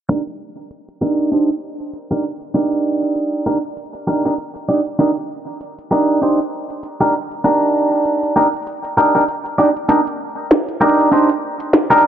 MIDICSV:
0, 0, Header, 1, 3, 480
1, 0, Start_track
1, 0, Key_signature, -3, "minor"
1, 0, Tempo, 612245
1, 78, Time_signature, 4, 2, 24, 8
1, 9463, End_track
2, 0, Start_track
2, 0, Title_t, "Clean electric guitar"
2, 0, Program_c, 0, 27
2, 72, Note_on_c, 0, 62, 73
2, 76, Note_on_c, 0, 63, 63
2, 80, Note_on_c, 0, 70, 76
2, 83, Note_on_c, 0, 67, 59
2, 158, Note_off_c, 0, 62, 0
2, 158, Note_off_c, 0, 70, 0
2, 159, Note_off_c, 0, 63, 0
2, 159, Note_off_c, 0, 67, 0
2, 794, Note_on_c, 0, 67, 68
2, 797, Note_on_c, 0, 70, 77
2, 800, Note_on_c, 0, 63, 62
2, 803, Note_on_c, 0, 62, 62
2, 1013, Note_off_c, 0, 62, 0
2, 1013, Note_off_c, 0, 63, 0
2, 1013, Note_off_c, 0, 67, 0
2, 1013, Note_off_c, 0, 70, 0
2, 1032, Note_on_c, 0, 62, 79
2, 1035, Note_on_c, 0, 63, 68
2, 1039, Note_on_c, 0, 67, 62
2, 1043, Note_on_c, 0, 72, 69
2, 1167, Note_off_c, 0, 63, 0
2, 1168, Note_off_c, 0, 62, 0
2, 1168, Note_off_c, 0, 67, 0
2, 1168, Note_off_c, 0, 72, 0
2, 1653, Note_on_c, 0, 67, 67
2, 1656, Note_on_c, 0, 70, 81
2, 1658, Note_on_c, 0, 63, 61
2, 1662, Note_on_c, 0, 62, 70
2, 1751, Note_off_c, 0, 63, 0
2, 1751, Note_off_c, 0, 70, 0
2, 1752, Note_off_c, 0, 62, 0
2, 1752, Note_off_c, 0, 67, 0
2, 1994, Note_on_c, 0, 62, 68
2, 1997, Note_on_c, 0, 63, 61
2, 2001, Note_on_c, 0, 67, 59
2, 2006, Note_on_c, 0, 70, 68
2, 2693, Note_off_c, 0, 62, 0
2, 2693, Note_off_c, 0, 63, 0
2, 2693, Note_off_c, 0, 67, 0
2, 2693, Note_off_c, 0, 70, 0
2, 2714, Note_on_c, 0, 70, 87
2, 2717, Note_on_c, 0, 67, 71
2, 2721, Note_on_c, 0, 63, 71
2, 2724, Note_on_c, 0, 62, 68
2, 2799, Note_off_c, 0, 62, 0
2, 2799, Note_off_c, 0, 63, 0
2, 2799, Note_off_c, 0, 67, 0
2, 2799, Note_off_c, 0, 70, 0
2, 3193, Note_on_c, 0, 67, 69
2, 3196, Note_on_c, 0, 70, 78
2, 3201, Note_on_c, 0, 63, 62
2, 3205, Note_on_c, 0, 62, 63
2, 3315, Note_off_c, 0, 62, 0
2, 3315, Note_off_c, 0, 63, 0
2, 3315, Note_off_c, 0, 70, 0
2, 3316, Note_off_c, 0, 67, 0
2, 3333, Note_on_c, 0, 67, 81
2, 3336, Note_on_c, 0, 70, 94
2, 3339, Note_on_c, 0, 63, 73
2, 3342, Note_on_c, 0, 62, 75
2, 3395, Note_off_c, 0, 62, 0
2, 3396, Note_off_c, 0, 63, 0
2, 3396, Note_off_c, 0, 67, 0
2, 3396, Note_off_c, 0, 70, 0
2, 3674, Note_on_c, 0, 74, 69
2, 3678, Note_on_c, 0, 67, 58
2, 3681, Note_on_c, 0, 63, 55
2, 3686, Note_on_c, 0, 62, 48
2, 3759, Note_off_c, 0, 62, 0
2, 3759, Note_off_c, 0, 63, 0
2, 3759, Note_off_c, 0, 74, 0
2, 3760, Note_off_c, 0, 67, 0
2, 3912, Note_on_c, 0, 62, 77
2, 3917, Note_on_c, 0, 63, 70
2, 3922, Note_on_c, 0, 70, 80
2, 3926, Note_on_c, 0, 67, 59
2, 3999, Note_off_c, 0, 62, 0
2, 3999, Note_off_c, 0, 63, 0
2, 3999, Note_off_c, 0, 67, 0
2, 3999, Note_off_c, 0, 70, 0
2, 4633, Note_on_c, 0, 67, 75
2, 4637, Note_on_c, 0, 70, 86
2, 4642, Note_on_c, 0, 63, 63
2, 4646, Note_on_c, 0, 62, 72
2, 4853, Note_off_c, 0, 62, 0
2, 4853, Note_off_c, 0, 63, 0
2, 4853, Note_off_c, 0, 67, 0
2, 4853, Note_off_c, 0, 70, 0
2, 4874, Note_on_c, 0, 62, 77
2, 4877, Note_on_c, 0, 63, 67
2, 4881, Note_on_c, 0, 67, 64
2, 4884, Note_on_c, 0, 72, 78
2, 5008, Note_off_c, 0, 62, 0
2, 5008, Note_off_c, 0, 63, 0
2, 5008, Note_off_c, 0, 67, 0
2, 5008, Note_off_c, 0, 72, 0
2, 5492, Note_on_c, 0, 67, 76
2, 5496, Note_on_c, 0, 70, 87
2, 5499, Note_on_c, 0, 63, 63
2, 5504, Note_on_c, 0, 62, 65
2, 5592, Note_off_c, 0, 62, 0
2, 5592, Note_off_c, 0, 63, 0
2, 5592, Note_off_c, 0, 67, 0
2, 5592, Note_off_c, 0, 70, 0
2, 5835, Note_on_c, 0, 62, 74
2, 5838, Note_on_c, 0, 63, 63
2, 5842, Note_on_c, 0, 70, 73
2, 5844, Note_on_c, 0, 67, 59
2, 6534, Note_off_c, 0, 62, 0
2, 6534, Note_off_c, 0, 63, 0
2, 6534, Note_off_c, 0, 67, 0
2, 6534, Note_off_c, 0, 70, 0
2, 6554, Note_on_c, 0, 67, 75
2, 6557, Note_on_c, 0, 70, 85
2, 6561, Note_on_c, 0, 63, 69
2, 6564, Note_on_c, 0, 62, 76
2, 6639, Note_off_c, 0, 62, 0
2, 6639, Note_off_c, 0, 63, 0
2, 6639, Note_off_c, 0, 67, 0
2, 6639, Note_off_c, 0, 70, 0
2, 7034, Note_on_c, 0, 70, 84
2, 7037, Note_on_c, 0, 67, 66
2, 7041, Note_on_c, 0, 63, 64
2, 7042, Note_on_c, 0, 62, 69
2, 7155, Note_off_c, 0, 62, 0
2, 7155, Note_off_c, 0, 63, 0
2, 7155, Note_off_c, 0, 67, 0
2, 7155, Note_off_c, 0, 70, 0
2, 7171, Note_on_c, 0, 67, 78
2, 7175, Note_on_c, 0, 70, 90
2, 7179, Note_on_c, 0, 63, 73
2, 7184, Note_on_c, 0, 62, 73
2, 7235, Note_off_c, 0, 62, 0
2, 7235, Note_off_c, 0, 63, 0
2, 7235, Note_off_c, 0, 70, 0
2, 7236, Note_off_c, 0, 67, 0
2, 7513, Note_on_c, 0, 74, 72
2, 7517, Note_on_c, 0, 67, 54
2, 7520, Note_on_c, 0, 63, 54
2, 7522, Note_on_c, 0, 62, 55
2, 7598, Note_off_c, 0, 62, 0
2, 7598, Note_off_c, 0, 63, 0
2, 7598, Note_off_c, 0, 74, 0
2, 7599, Note_off_c, 0, 67, 0
2, 7752, Note_on_c, 0, 62, 74
2, 7755, Note_on_c, 0, 63, 63
2, 7759, Note_on_c, 0, 70, 76
2, 7763, Note_on_c, 0, 67, 63
2, 7838, Note_off_c, 0, 62, 0
2, 7838, Note_off_c, 0, 63, 0
2, 7838, Note_off_c, 0, 67, 0
2, 7838, Note_off_c, 0, 70, 0
2, 8473, Note_on_c, 0, 67, 73
2, 8476, Note_on_c, 0, 70, 77
2, 8480, Note_on_c, 0, 63, 64
2, 8484, Note_on_c, 0, 62, 65
2, 8693, Note_off_c, 0, 62, 0
2, 8693, Note_off_c, 0, 63, 0
2, 8693, Note_off_c, 0, 67, 0
2, 8693, Note_off_c, 0, 70, 0
2, 8715, Note_on_c, 0, 62, 79
2, 8718, Note_on_c, 0, 63, 73
2, 8721, Note_on_c, 0, 67, 65
2, 8724, Note_on_c, 0, 72, 80
2, 8848, Note_off_c, 0, 62, 0
2, 8848, Note_off_c, 0, 63, 0
2, 8848, Note_off_c, 0, 67, 0
2, 8848, Note_off_c, 0, 72, 0
2, 9332, Note_on_c, 0, 70, 94
2, 9336, Note_on_c, 0, 67, 71
2, 9339, Note_on_c, 0, 63, 66
2, 9344, Note_on_c, 0, 62, 70
2, 9432, Note_off_c, 0, 62, 0
2, 9432, Note_off_c, 0, 63, 0
2, 9432, Note_off_c, 0, 67, 0
2, 9432, Note_off_c, 0, 70, 0
2, 9463, End_track
3, 0, Start_track
3, 0, Title_t, "Drums"
3, 76, Note_on_c, 9, 42, 72
3, 155, Note_off_c, 9, 42, 0
3, 215, Note_on_c, 9, 42, 46
3, 293, Note_off_c, 9, 42, 0
3, 556, Note_on_c, 9, 42, 74
3, 634, Note_off_c, 9, 42, 0
3, 695, Note_on_c, 9, 42, 48
3, 773, Note_off_c, 9, 42, 0
3, 935, Note_on_c, 9, 42, 15
3, 953, Note_off_c, 9, 42, 0
3, 953, Note_on_c, 9, 42, 18
3, 958, Note_off_c, 9, 42, 0
3, 958, Note_on_c, 9, 42, 21
3, 987, Note_off_c, 9, 42, 0
3, 987, Note_on_c, 9, 42, 23
3, 1004, Note_off_c, 9, 42, 0
3, 1004, Note_on_c, 9, 42, 26
3, 1020, Note_off_c, 9, 42, 0
3, 1020, Note_on_c, 9, 42, 29
3, 1038, Note_off_c, 9, 42, 0
3, 1038, Note_on_c, 9, 42, 74
3, 1116, Note_off_c, 9, 42, 0
3, 1175, Note_on_c, 9, 42, 47
3, 1254, Note_off_c, 9, 42, 0
3, 1417, Note_on_c, 9, 42, 34
3, 1495, Note_off_c, 9, 42, 0
3, 1517, Note_on_c, 9, 42, 73
3, 1596, Note_off_c, 9, 42, 0
3, 1657, Note_on_c, 9, 42, 47
3, 1735, Note_off_c, 9, 42, 0
3, 1896, Note_on_c, 9, 42, 33
3, 1975, Note_off_c, 9, 42, 0
3, 1999, Note_on_c, 9, 42, 74
3, 2077, Note_off_c, 9, 42, 0
3, 2136, Note_on_c, 9, 42, 49
3, 2215, Note_off_c, 9, 42, 0
3, 2477, Note_on_c, 9, 42, 75
3, 2556, Note_off_c, 9, 42, 0
3, 2616, Note_on_c, 9, 42, 49
3, 2695, Note_off_c, 9, 42, 0
3, 2856, Note_on_c, 9, 42, 16
3, 2907, Note_off_c, 9, 42, 0
3, 2907, Note_on_c, 9, 42, 20
3, 2956, Note_off_c, 9, 42, 0
3, 2956, Note_on_c, 9, 42, 74
3, 3026, Note_off_c, 9, 42, 0
3, 3026, Note_on_c, 9, 42, 29
3, 3096, Note_off_c, 9, 42, 0
3, 3096, Note_on_c, 9, 42, 49
3, 3174, Note_off_c, 9, 42, 0
3, 3335, Note_on_c, 9, 42, 34
3, 3414, Note_off_c, 9, 42, 0
3, 3436, Note_on_c, 9, 42, 75
3, 3515, Note_off_c, 9, 42, 0
3, 3576, Note_on_c, 9, 42, 47
3, 3655, Note_off_c, 9, 42, 0
3, 3816, Note_on_c, 9, 42, 32
3, 3895, Note_off_c, 9, 42, 0
3, 3918, Note_on_c, 9, 42, 73
3, 3996, Note_off_c, 9, 42, 0
3, 4056, Note_on_c, 9, 42, 48
3, 4135, Note_off_c, 9, 42, 0
3, 4397, Note_on_c, 9, 42, 71
3, 4475, Note_off_c, 9, 42, 0
3, 4537, Note_on_c, 9, 42, 47
3, 4615, Note_off_c, 9, 42, 0
3, 4776, Note_on_c, 9, 42, 33
3, 4855, Note_off_c, 9, 42, 0
3, 4878, Note_on_c, 9, 42, 74
3, 4956, Note_off_c, 9, 42, 0
3, 5017, Note_on_c, 9, 42, 47
3, 5095, Note_off_c, 9, 42, 0
3, 5257, Note_on_c, 9, 42, 33
3, 5336, Note_off_c, 9, 42, 0
3, 5357, Note_on_c, 9, 42, 71
3, 5436, Note_off_c, 9, 42, 0
3, 5495, Note_on_c, 9, 42, 48
3, 5573, Note_off_c, 9, 42, 0
3, 5735, Note_on_c, 9, 42, 32
3, 5814, Note_off_c, 9, 42, 0
3, 5836, Note_on_c, 9, 42, 70
3, 5915, Note_off_c, 9, 42, 0
3, 5976, Note_on_c, 9, 42, 46
3, 6054, Note_off_c, 9, 42, 0
3, 6316, Note_on_c, 9, 42, 70
3, 6394, Note_off_c, 9, 42, 0
3, 6456, Note_on_c, 9, 42, 48
3, 6534, Note_off_c, 9, 42, 0
3, 6695, Note_on_c, 9, 42, 30
3, 6717, Note_off_c, 9, 42, 0
3, 6717, Note_on_c, 9, 42, 26
3, 6765, Note_off_c, 9, 42, 0
3, 6765, Note_on_c, 9, 42, 20
3, 6797, Note_off_c, 9, 42, 0
3, 6797, Note_on_c, 9, 42, 73
3, 6844, Note_off_c, 9, 42, 0
3, 6844, Note_on_c, 9, 42, 14
3, 6879, Note_off_c, 9, 42, 0
3, 6879, Note_on_c, 9, 42, 11
3, 6937, Note_off_c, 9, 42, 0
3, 6937, Note_on_c, 9, 42, 46
3, 7016, Note_off_c, 9, 42, 0
3, 7279, Note_on_c, 9, 42, 70
3, 7358, Note_off_c, 9, 42, 0
3, 7418, Note_on_c, 9, 42, 45
3, 7496, Note_off_c, 9, 42, 0
3, 7658, Note_on_c, 9, 42, 32
3, 7737, Note_off_c, 9, 42, 0
3, 7759, Note_on_c, 9, 42, 70
3, 7837, Note_off_c, 9, 42, 0
3, 7898, Note_on_c, 9, 42, 45
3, 7976, Note_off_c, 9, 42, 0
3, 8239, Note_on_c, 9, 38, 108
3, 8239, Note_on_c, 9, 42, 69
3, 8317, Note_off_c, 9, 38, 0
3, 8317, Note_off_c, 9, 42, 0
3, 8378, Note_on_c, 9, 42, 47
3, 8457, Note_off_c, 9, 42, 0
3, 8618, Note_on_c, 9, 42, 31
3, 8696, Note_off_c, 9, 42, 0
3, 8719, Note_on_c, 9, 42, 69
3, 8797, Note_off_c, 9, 42, 0
3, 8857, Note_on_c, 9, 42, 44
3, 8935, Note_off_c, 9, 42, 0
3, 9096, Note_on_c, 9, 42, 32
3, 9174, Note_off_c, 9, 42, 0
3, 9199, Note_on_c, 9, 38, 108
3, 9199, Note_on_c, 9, 42, 68
3, 9277, Note_off_c, 9, 38, 0
3, 9277, Note_off_c, 9, 42, 0
3, 9336, Note_on_c, 9, 42, 44
3, 9414, Note_off_c, 9, 42, 0
3, 9463, End_track
0, 0, End_of_file